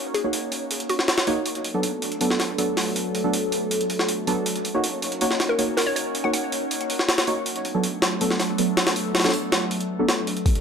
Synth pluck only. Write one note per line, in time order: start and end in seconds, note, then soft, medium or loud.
0.14 0.43 G#4 medium
0.90 1.18 F#4 medium
5.49 5.72 A#4 medium
5.77 5.85 A#4 medium
5.86 5.92 C#5 medium
5.96 6.02 C#5 medium
6.24 6.30 F#5 medium
6.34 6.40 F#5 medium